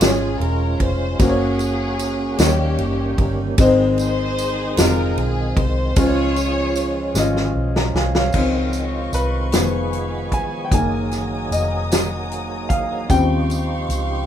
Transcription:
Already playing: grand piano C#3 C#4 F4 C#5, tonewheel organ G#3 C#4 F4, string section F4
0.00 fingered electric bass G#1, grand piano G#3 C#4 F4, string section G#4, snare, ride, tambourine
0.04 grand piano C#5
0.40 fingered electric bass E1, string section A#4, ride
0.78 fingered electric bass F1, string section C5, kick, ride
1.19 fingered electric bass F#1, grand piano A#3 C#4 F#4 C5, tonewheel organ A#3 F#4, string section C#4 G#4, kick, ride, tambourine
1.29 grand piano C#5
1.59 ride, tambourine
1.99 ride, tambourine
2.38 fingered electric bass D#2, tonewheel organ D#3 G3 G4, grand piano D#3 A#3 D#4 G4 C#5, string section A#3 C#4 G4, snare, ride, tambourine
2.78 fingered electric bass F#1, ride
3.18 fingered electric bass G1, kick, ride
3.58 fingered electric bass G#1, grand piano G#2 G#3 C4 D#4 C5, tonewheel organ G#3 C4, kick, ride, tambourine
3.98 string section D#4 G#4 C5, ride, tambourine
4.38 ride, tambourine
4.77 fingered electric bass F1, grand piano G#3 C4 D#4 F4, string section A#4, snare, ride, tambourine
5.17 fingered electric bass B1, string section G#4, ride
5.56 fingered electric bass C2, string section C5, kick, ride
5.96 fingered electric bass C#2, grand piano C#3 G#3 C#4 F4 C5, tonewheel organ F3 C#4, string section F4 G#4 C#5, kick, ride, tambourine
6.06 grand piano C#5
6.36 ride, tambourine
6.75 ride, tambourine
7.14 fingered electric bass G#1, grand piano G#3 C#4 F4 D#5, snare, tambourine
7.37 snare
7.55 fingered electric bass B1
7.76 grand piano A#5, snare
7.94 fingered electric bass C2, grand piano F5 G#5, snare
8.15 grand piano C#5 F5, snare
8.32 fingered electric bass C#2, tonewheel organ D#3 G#3 C4 F4, grand piano D#3 F3, string section D#5 F5 C#6, kick, crash, tambourine
8.37 grand piano C4
8.73 closed hi-hat, tambourine
9.13 fingered electric bass C2, grand piano B4, closed hi-hat, tambourine
9.52 fingered electric bass F1, grand piano D#3 F3 B3, tonewheel organ F3 B3 G#4, string section F5 G#5 B5, snare, closed hi-hat, tambourine
9.93 closed hi-hat
10.32 grand piano G#5, kick, closed hi-hat
10.65 grand piano G5
10.71 fingered electric bass F#1, grand piano D#3 G#3 A#3 G#5, tonewheel organ F#3 A#3 D#4, string section F#4 A#5 D#6, kick, closed hi-hat, tambourine
11.11 snare, closed hi-hat, tambourine
11.51 fingered electric bass F1, grand piano D#5, closed hi-hat, tambourine
11.91 snare, closed hi-hat, tambourine
12.32 closed hi-hat
12.69 grand piano F5, kick, closed hi-hat
13.09 fingered electric bass D#2, grand piano C#3 F3 G3 C4 G5, tonewheel organ F3 G4, string section F5 G5 C6 C#6, kick, closed hi-hat, tambourine
13.50 closed hi-hat, tambourine
13.89 fingered electric bass C#2, closed hi-hat, tambourine

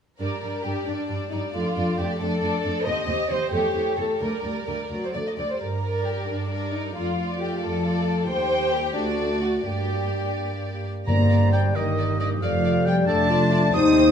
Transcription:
0.19 cello section G2, viola section G3 D4, violin section A#4 D5
0.42 cello section G2, viola section G3 D4, violin section D5
0.64 cello section G2, viola section G3 D4, violin section G4 D5
0.86 cello section G2, viola section G3 D4, violin section D4 D5
1.09 cello section G2, viola section G3 D4, violin section D5
1.31 cello section G2, viola section G3 D4, violin section D#4 D5
1.53 cello section F2, viola section A3 D4, violin section F4 D5
1.76 cello section F2, viola section A3 D4, violin section D5
1.98 cello section F2, viola section A3 D4, violin section G4 D5
2.19 cello section F2, viola section A3 D4, violin section A4 D5
2.41 cello section F2, viola section A3 D4, violin section D5
2.63 cello section F2, viola section A3 D4, violin section D5
2.86 cello section D#2, viola section C4 G4, violin section D#5
3.08 cello section D#2, viola section C4 G4, violin section D#5
3.29 cello section D#2, viola section C4 G4, violin section C5 D#5
3.51 cello section E2, viola section A3 A4, violin section G4 C#5
3.74 cello section E2, viola section A3 A4, violin section C#5
3.97 cello section E2, viola section A3 A4, violin section A4 C#5
4.20 cello section D2, viola section G3 A#4, violin section A#4 D5
4.44 cello section D2, viola section G3 A#4, violin section D5
4.67 cello section D2, viola section G3 A#4, violin section D5
4.90 cello section D2, viola section F#3, violin section D5
5.04 violin section C5
5.13 cello section D2, viola section A3, violin section D5
5.27 violin section D#5
5.37 cello section D2, viola section G3, violin section D5
5.50 violin section C5
5.60 cello section G2, violin section A#4
5.83 viola section G3 A#4, violin section D5
6.05 violin section G4
6.28 cello section G2, violin section D4
6.51 viola section G3 A#4, violin section D5
6.74 violin section D#4
6.95 cello section F2, viola section A3 F4, violin section F4 D5
7.17 viola section A3 F4, violin section D5
7.40 violin section G4
7.62 cello section F2, violin section A4
7.84 viola section A3 F4, violin section D5
8.28 cello section D#2, viola section G3 G4, violin section C5 G5
8.73 violin section G4
8.95 cello section D2, viola section A3 F#4, violin section D4 D5
9.42 violin section F#4
9.65 cello section G2, viola section A#3 G4, violin section G4 D5
11.06 double bass section G1, timpani G2, cello section G2, french horn section A#3, viola section C4, clarinet G4, flute D5, violin section D5 A#5, oboe A#5
11.30 violin section D5
11.52 french horn section G3, violin section D5 G5, oboe G5
11.75 double bass section G1, cello section G2, french horn section D#3, viola section A#3, flute A#4, violin section D5 D#5, oboe D#5
11.99 violin section D5
12.19 french horn section D#3, violin section D5 D#5, oboe D#5
12.42 double bass section F1, cello section F2, french horn section F3, viola section A3, flute D5, violin section D5 F5, oboe F5
12.65 violin section D5
12.86 french horn section G3, violin section D5 G5, oboe G5
13.07 double bass section F1, cello section F2, french horn section A3, viola section D4, clarinet A4, violin section D5 A5, oboe A5
13.29 clarinet F4, violin section D5
13.52 clarinet F4, violin section D5
13.74 double bass section D#2, cello section D#2, viola section C4, french horn section D#4, clarinet G4, flute C5, violin section C5 D#6, oboe D#6
13.97 violin section C5

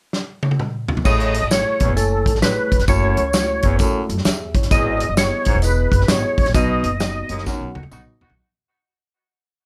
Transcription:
0.13 snare
0.43 high tom
0.51 high tom
0.59 mid tom
0.88 floor tom
0.97 floor tom
1.05 upright bass A1, baritone saxophone A2, tine electric piano A3 E4 G#4 C#5, tonewheel organ D#5, kick, crash, tambourine
1.20 closed hi-hat
1.34 closed hi-hat
1.43 upright bass G#1
1.50 tine electric piano A3 E4 G#4 C#5, tonewheel organ C#5, snare, closed hi-hat, tambourine
1.80 upright bass A1, baritone saxophone E2, kick, closed hi-hat
1.88 upright bass F#1
1.97 tine electric piano A3 E4 C#5 G#5, tonewheel organ A4, closed hi-hat, tambourine
2.26 upright bass G#1, kick, closed hi-hat
2.35 snare
2.42 upright bass A1, tine electric piano A3 E4 G#4 C#5, tonewheel organ B4, snare, closed hi-hat, tambourine
2.72 upright bass E1, kick, closed hi-hat
2.79 upright bass F1, snare, closed hi-hat
2.88 upright bass F#1, baritone saxophone F#2, tine electric piano A3 E4 F#4 C#5, tonewheel organ C#5, kick, closed hi-hat, tambourine
3.17 upright bass C#2, closed hi-hat
3.33 tine electric piano A3 E4 F#4 C#5, snare, closed hi-hat, tambourine
3.62 upright bass F#1, baritone saxophone E2, kick, closed hi-hat
3.79 upright bass C#2, baritone saxophone F#2, tine electric piano A3 E4 F#4 A4, kick, closed hi-hat, tambourine
4.09 upright bass F#2, closed hi-hat
4.18 snare
4.25 upright bass E2, tine electric piano G#4 E5, snare, closed hi-hat, tambourine
4.54 upright bass G1, tine electric piano E4 C#5, kick, closed hi-hat
4.63 snare, closed hi-hat
4.71 upright bass G#1, baritone saxophone E2, tine electric piano B3 E4 G#4 D#5, tonewheel organ D#5, kick, closed hi-hat, tambourine
5.00 closed hi-hat
5.09 upright bass F#1
5.17 tine electric piano B3 E4 G#4 D#5, tonewheel organ C#5, snare, closed hi-hat, tambourine
5.45 upright bass G#1, baritone saxophone G#2, kick, closed hi-hat
5.55 upright bass E1
5.62 tine electric piano B3 E4 G#4 D#5, tonewheel organ B4, closed hi-hat, tambourine
5.92 upright bass F#1, kick, closed hi-hat
6.01 snare
6.08 upright bass G#1, tine electric piano B3 E4 G#4 D#5, tonewheel organ C#5, snare, closed hi-hat, tambourine
6.37 upright bass A1, kick, open hi-hat
6.46 upright bass A#1, snare, closed hi-hat
6.54 upright bass B1, baritone saxophone B2, tine electric piano B3 D#4 F#4 D#5, tonewheel organ D#5, kick, closed hi-hat, tambourine
6.84 upright bass F#1, closed hi-hat
7.00 tine electric piano B3 D#4 F#4 D#5, snare, closed hi-hat, tambourine
7.29 upright bass F#1, baritone saxophone D#2, closed hi-hat
7.38 snare
7.46 baritone saxophone F#2, tine electric piano B3 D#4 F#4 F#5, kick, snare, tambourine
7.61 upright bass B1
7.75 upright bass D#2, horn section B3 D#4 F#4, high tom
7.83 upright bass C#2, high tom
7.91 upright bass B1, tine electric piano B3 D#4 F#4 D#5, horn section B3 D#4 F#4, mid tom, tambourine
8.21 upright bass A1, horn section B3 D#4 F#4, floor tom
8.30 upright bass B1, floor tom

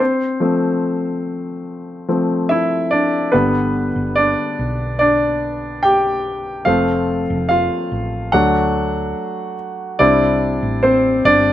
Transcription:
0.00 grand piano C4 C5
0.40 grand piano F3 A3 C4
2.08 grand piano F3 A3 C4
2.49 grand piano E4 E5
2.91 grand piano D4 D5
3.32 fretless electric bass G1, grand piano D3 G3 B3 B4
3.96 fretless electric bass G1
4.16 grand piano D4 D5
4.59 fretless electric bass B1
4.99 grand piano D4 D5
5.83 grand piano G4 G5
6.65 fretless electric bass F1, grand piano F3 A3 C4 F4 F5
7.30 fretless electric bass F1
7.49 grand piano F4 F5
7.92 fretless electric bass A1
8.32 fretless electric bass D2, grand piano F#3 A3 D4 F#4 F#5
9.99 fretless electric bass C2, grand piano G3 C4 D4 E4 D5
10.63 fretless electric bass A1
10.83 grand piano C4 C5
11.25 fretless electric bass G1, grand piano D4 D5

